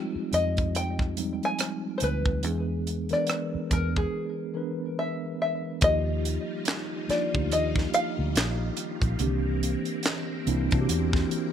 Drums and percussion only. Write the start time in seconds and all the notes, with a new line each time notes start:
0.33 closed hi-hat
0.57 kick, closed hi-hat
0.75 closed hi-hat
0.99 kick, cross-stick
1.17 closed hi-hat
1.43 closed hi-hat
1.59 cross-stick, closed hi-hat
2.00 cross-stick, closed hi-hat
2.26 kick
2.43 closed hi-hat
2.87 closed hi-hat
3.09 cross-stick, closed hi-hat
3.27 cross-stick, closed hi-hat
3.71 kick, closed hi-hat
3.96 kick
5.81 kick, closed hi-hat
6.25 closed hi-hat
6.65 snare, clap, closed hi-hat
7.10 snare, closed hi-hat
7.35 kick
7.52 closed hi-hat
7.76 kick, snare
7.94 closed hi-hat
8.36 snare, clap, closed hi-hat
8.77 closed hi-hat
9.02 kick, closed hi-hat
9.19 closed hi-hat
9.63 closed hi-hat
9.85 closed hi-hat
10.03 snare, clap, closed hi-hat
10.47 closed hi-hat
10.71 kick, closed hi-hat
10.89 closed hi-hat
11.13 kick, snare
11.31 closed hi-hat